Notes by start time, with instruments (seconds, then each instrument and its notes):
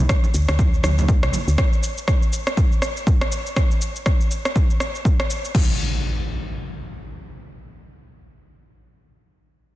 0.09 kick, cross-stick, shaker
0.24 muted conga, shaker
0.34 fm bass D2, shaker
0.48 fm bass D2, cross-stick, muted conga, shaker
0.59 kick, high conga, shaker
0.74 shaker
0.83 fm bass D2, cross-stick, muted conga, high conga, low conga, shaker
0.98 high conga, low conga, shaker
1.08 kick, muted conga, shaker
1.23 fm bass C2, cross-stick, shaker
1.32 muted conga, high conga, low conga, shaker
1.48 fm bass D2, shaker
1.58 kick, cross-stick, shaker
1.73 shaker
1.83 shaker
1.98 shaker
2.08 kick, cross-stick, shaker
2.23 shaker
2.33 shaker
2.47 cross-stick, shaker
2.57 kick, shaker
2.72 shaker
2.82 cross-stick, shaker
2.97 shaker
3.07 kick, shaker
3.21 cross-stick, shaker
3.32 shaker
3.46 shaker
3.56 kick, cross-stick, shaker
3.71 shaker
3.82 shaker
3.96 shaker
4.06 kick, cross-stick, shaker
4.21 shaker
4.31 shaker
4.45 cross-stick, shaker
4.56 kick, shaker
4.70 shaker
4.80 cross-stick, shaker
4.95 shaker
5.05 kick, shaker
5.20 cross-stick, shaker
5.30 shaker
5.45 shaker
5.55 kick, crash, impact